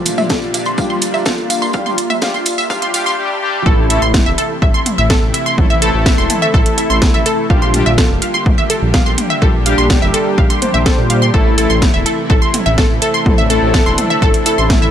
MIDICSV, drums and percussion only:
0, 0, Header, 1, 2, 480
1, 0, Start_track
1, 0, Tempo, 480000
1, 1741, Time_signature, 4, 2, 24, 8
1, 14909, End_track
2, 0, Start_track
2, 0, Title_t, "Drums"
2, 55, Note_on_c, 9, 54, 96
2, 60, Note_on_c, 9, 42, 107
2, 155, Note_off_c, 9, 54, 0
2, 160, Note_off_c, 9, 42, 0
2, 178, Note_on_c, 9, 54, 41
2, 181, Note_on_c, 9, 45, 78
2, 278, Note_off_c, 9, 54, 0
2, 281, Note_off_c, 9, 45, 0
2, 295, Note_on_c, 9, 54, 51
2, 300, Note_on_c, 9, 36, 119
2, 300, Note_on_c, 9, 38, 109
2, 395, Note_off_c, 9, 54, 0
2, 400, Note_off_c, 9, 36, 0
2, 400, Note_off_c, 9, 38, 0
2, 418, Note_on_c, 9, 54, 29
2, 517, Note_off_c, 9, 54, 0
2, 541, Note_on_c, 9, 42, 106
2, 543, Note_on_c, 9, 54, 91
2, 641, Note_off_c, 9, 42, 0
2, 643, Note_off_c, 9, 54, 0
2, 655, Note_on_c, 9, 54, 43
2, 755, Note_off_c, 9, 54, 0
2, 777, Note_on_c, 9, 54, 51
2, 780, Note_on_c, 9, 36, 127
2, 877, Note_off_c, 9, 54, 0
2, 880, Note_off_c, 9, 36, 0
2, 894, Note_on_c, 9, 54, 28
2, 994, Note_off_c, 9, 54, 0
2, 1016, Note_on_c, 9, 54, 98
2, 1019, Note_on_c, 9, 42, 106
2, 1116, Note_off_c, 9, 54, 0
2, 1119, Note_off_c, 9, 42, 0
2, 1138, Note_on_c, 9, 54, 40
2, 1238, Note_off_c, 9, 54, 0
2, 1255, Note_on_c, 9, 54, 51
2, 1260, Note_on_c, 9, 36, 126
2, 1260, Note_on_c, 9, 38, 105
2, 1355, Note_off_c, 9, 54, 0
2, 1360, Note_off_c, 9, 36, 0
2, 1360, Note_off_c, 9, 38, 0
2, 1379, Note_on_c, 9, 54, 27
2, 1479, Note_off_c, 9, 54, 0
2, 1500, Note_on_c, 9, 42, 110
2, 1502, Note_on_c, 9, 54, 97
2, 1600, Note_off_c, 9, 42, 0
2, 1602, Note_off_c, 9, 54, 0
2, 1622, Note_on_c, 9, 54, 43
2, 1723, Note_off_c, 9, 54, 0
2, 1733, Note_on_c, 9, 54, 54
2, 1740, Note_on_c, 9, 36, 121
2, 1833, Note_off_c, 9, 54, 0
2, 1840, Note_off_c, 9, 36, 0
2, 1862, Note_on_c, 9, 45, 76
2, 1865, Note_on_c, 9, 54, 28
2, 1962, Note_off_c, 9, 45, 0
2, 1965, Note_off_c, 9, 54, 0
2, 1980, Note_on_c, 9, 42, 106
2, 1980, Note_on_c, 9, 54, 87
2, 2080, Note_off_c, 9, 42, 0
2, 2080, Note_off_c, 9, 54, 0
2, 2101, Note_on_c, 9, 45, 79
2, 2102, Note_on_c, 9, 54, 38
2, 2201, Note_off_c, 9, 45, 0
2, 2202, Note_off_c, 9, 54, 0
2, 2216, Note_on_c, 9, 54, 53
2, 2220, Note_on_c, 9, 36, 119
2, 2220, Note_on_c, 9, 38, 104
2, 2316, Note_off_c, 9, 54, 0
2, 2320, Note_off_c, 9, 36, 0
2, 2320, Note_off_c, 9, 38, 0
2, 2348, Note_on_c, 9, 54, 28
2, 2448, Note_off_c, 9, 54, 0
2, 2456, Note_on_c, 9, 54, 95
2, 2460, Note_on_c, 9, 42, 110
2, 2556, Note_off_c, 9, 54, 0
2, 2560, Note_off_c, 9, 42, 0
2, 2581, Note_on_c, 9, 54, 46
2, 2681, Note_off_c, 9, 54, 0
2, 2700, Note_on_c, 9, 36, 127
2, 2702, Note_on_c, 9, 54, 54
2, 2800, Note_off_c, 9, 36, 0
2, 2802, Note_off_c, 9, 54, 0
2, 2822, Note_on_c, 9, 42, 62
2, 2822, Note_on_c, 9, 45, 79
2, 2825, Note_on_c, 9, 54, 27
2, 2922, Note_off_c, 9, 42, 0
2, 2922, Note_off_c, 9, 45, 0
2, 2925, Note_off_c, 9, 54, 0
2, 2938, Note_on_c, 9, 54, 101
2, 2941, Note_on_c, 9, 42, 105
2, 3038, Note_off_c, 9, 54, 0
2, 3041, Note_off_c, 9, 42, 0
2, 3065, Note_on_c, 9, 54, 44
2, 3165, Note_off_c, 9, 54, 0
2, 3660, Note_on_c, 9, 36, 121
2, 3760, Note_off_c, 9, 36, 0
2, 3901, Note_on_c, 9, 42, 104
2, 4001, Note_off_c, 9, 42, 0
2, 4140, Note_on_c, 9, 36, 118
2, 4141, Note_on_c, 9, 38, 112
2, 4141, Note_on_c, 9, 45, 93
2, 4240, Note_off_c, 9, 36, 0
2, 4241, Note_off_c, 9, 38, 0
2, 4241, Note_off_c, 9, 45, 0
2, 4381, Note_on_c, 9, 42, 102
2, 4481, Note_off_c, 9, 42, 0
2, 4620, Note_on_c, 9, 36, 120
2, 4720, Note_off_c, 9, 36, 0
2, 4860, Note_on_c, 9, 42, 105
2, 4860, Note_on_c, 9, 45, 91
2, 4960, Note_off_c, 9, 42, 0
2, 4960, Note_off_c, 9, 45, 0
2, 5100, Note_on_c, 9, 36, 120
2, 5100, Note_on_c, 9, 38, 107
2, 5200, Note_off_c, 9, 36, 0
2, 5200, Note_off_c, 9, 38, 0
2, 5341, Note_on_c, 9, 42, 108
2, 5441, Note_off_c, 9, 42, 0
2, 5580, Note_on_c, 9, 36, 123
2, 5581, Note_on_c, 9, 45, 88
2, 5680, Note_off_c, 9, 36, 0
2, 5681, Note_off_c, 9, 45, 0
2, 5820, Note_on_c, 9, 42, 108
2, 5920, Note_off_c, 9, 42, 0
2, 6059, Note_on_c, 9, 36, 125
2, 6060, Note_on_c, 9, 38, 115
2, 6159, Note_off_c, 9, 36, 0
2, 6160, Note_off_c, 9, 38, 0
2, 6298, Note_on_c, 9, 42, 107
2, 6298, Note_on_c, 9, 45, 87
2, 6398, Note_off_c, 9, 42, 0
2, 6398, Note_off_c, 9, 45, 0
2, 6539, Note_on_c, 9, 36, 127
2, 6639, Note_off_c, 9, 36, 0
2, 6659, Note_on_c, 9, 42, 61
2, 6759, Note_off_c, 9, 42, 0
2, 6778, Note_on_c, 9, 42, 110
2, 6878, Note_off_c, 9, 42, 0
2, 7018, Note_on_c, 9, 38, 108
2, 7018, Note_on_c, 9, 45, 85
2, 7020, Note_on_c, 9, 36, 124
2, 7118, Note_off_c, 9, 38, 0
2, 7118, Note_off_c, 9, 45, 0
2, 7120, Note_off_c, 9, 36, 0
2, 7259, Note_on_c, 9, 42, 110
2, 7359, Note_off_c, 9, 42, 0
2, 7500, Note_on_c, 9, 36, 127
2, 7600, Note_off_c, 9, 36, 0
2, 7739, Note_on_c, 9, 42, 114
2, 7739, Note_on_c, 9, 45, 87
2, 7839, Note_off_c, 9, 42, 0
2, 7839, Note_off_c, 9, 45, 0
2, 7980, Note_on_c, 9, 36, 126
2, 7980, Note_on_c, 9, 38, 112
2, 8080, Note_off_c, 9, 36, 0
2, 8080, Note_off_c, 9, 38, 0
2, 8220, Note_on_c, 9, 42, 107
2, 8320, Note_off_c, 9, 42, 0
2, 8459, Note_on_c, 9, 45, 86
2, 8460, Note_on_c, 9, 36, 127
2, 8559, Note_off_c, 9, 45, 0
2, 8560, Note_off_c, 9, 36, 0
2, 8699, Note_on_c, 9, 42, 109
2, 8799, Note_off_c, 9, 42, 0
2, 8939, Note_on_c, 9, 38, 105
2, 8940, Note_on_c, 9, 36, 125
2, 9039, Note_off_c, 9, 38, 0
2, 9040, Note_off_c, 9, 36, 0
2, 9179, Note_on_c, 9, 42, 117
2, 9179, Note_on_c, 9, 45, 90
2, 9279, Note_off_c, 9, 42, 0
2, 9279, Note_off_c, 9, 45, 0
2, 9420, Note_on_c, 9, 36, 127
2, 9520, Note_off_c, 9, 36, 0
2, 9659, Note_on_c, 9, 42, 106
2, 9759, Note_off_c, 9, 42, 0
2, 9899, Note_on_c, 9, 38, 106
2, 9899, Note_on_c, 9, 45, 93
2, 9900, Note_on_c, 9, 36, 123
2, 9999, Note_off_c, 9, 38, 0
2, 9999, Note_off_c, 9, 45, 0
2, 10000, Note_off_c, 9, 36, 0
2, 10140, Note_on_c, 9, 42, 104
2, 10240, Note_off_c, 9, 42, 0
2, 10380, Note_on_c, 9, 36, 127
2, 10480, Note_off_c, 9, 36, 0
2, 10501, Note_on_c, 9, 42, 60
2, 10601, Note_off_c, 9, 42, 0
2, 10620, Note_on_c, 9, 42, 108
2, 10620, Note_on_c, 9, 45, 89
2, 10720, Note_off_c, 9, 42, 0
2, 10720, Note_off_c, 9, 45, 0
2, 10860, Note_on_c, 9, 36, 127
2, 10860, Note_on_c, 9, 38, 107
2, 10960, Note_off_c, 9, 36, 0
2, 10960, Note_off_c, 9, 38, 0
2, 11099, Note_on_c, 9, 42, 107
2, 11199, Note_off_c, 9, 42, 0
2, 11340, Note_on_c, 9, 36, 122
2, 11440, Note_off_c, 9, 36, 0
2, 11579, Note_on_c, 9, 42, 102
2, 11679, Note_off_c, 9, 42, 0
2, 11820, Note_on_c, 9, 36, 119
2, 11820, Note_on_c, 9, 38, 102
2, 11820, Note_on_c, 9, 45, 92
2, 11920, Note_off_c, 9, 36, 0
2, 11920, Note_off_c, 9, 38, 0
2, 11920, Note_off_c, 9, 45, 0
2, 12060, Note_on_c, 9, 42, 104
2, 12160, Note_off_c, 9, 42, 0
2, 12300, Note_on_c, 9, 36, 126
2, 12400, Note_off_c, 9, 36, 0
2, 12539, Note_on_c, 9, 42, 102
2, 12539, Note_on_c, 9, 45, 91
2, 12639, Note_off_c, 9, 42, 0
2, 12639, Note_off_c, 9, 45, 0
2, 12779, Note_on_c, 9, 38, 99
2, 12780, Note_on_c, 9, 36, 120
2, 12879, Note_off_c, 9, 38, 0
2, 12880, Note_off_c, 9, 36, 0
2, 13019, Note_on_c, 9, 42, 106
2, 13119, Note_off_c, 9, 42, 0
2, 13260, Note_on_c, 9, 36, 117
2, 13260, Note_on_c, 9, 45, 99
2, 13360, Note_off_c, 9, 36, 0
2, 13360, Note_off_c, 9, 45, 0
2, 13500, Note_on_c, 9, 42, 99
2, 13600, Note_off_c, 9, 42, 0
2, 13739, Note_on_c, 9, 38, 104
2, 13740, Note_on_c, 9, 36, 114
2, 13839, Note_off_c, 9, 38, 0
2, 13840, Note_off_c, 9, 36, 0
2, 13980, Note_on_c, 9, 42, 99
2, 13980, Note_on_c, 9, 45, 92
2, 14080, Note_off_c, 9, 42, 0
2, 14080, Note_off_c, 9, 45, 0
2, 14220, Note_on_c, 9, 36, 122
2, 14320, Note_off_c, 9, 36, 0
2, 14341, Note_on_c, 9, 42, 56
2, 14441, Note_off_c, 9, 42, 0
2, 14460, Note_on_c, 9, 42, 103
2, 14560, Note_off_c, 9, 42, 0
2, 14700, Note_on_c, 9, 36, 111
2, 14700, Note_on_c, 9, 38, 97
2, 14700, Note_on_c, 9, 45, 98
2, 14800, Note_off_c, 9, 36, 0
2, 14800, Note_off_c, 9, 38, 0
2, 14800, Note_off_c, 9, 45, 0
2, 14909, End_track
0, 0, End_of_file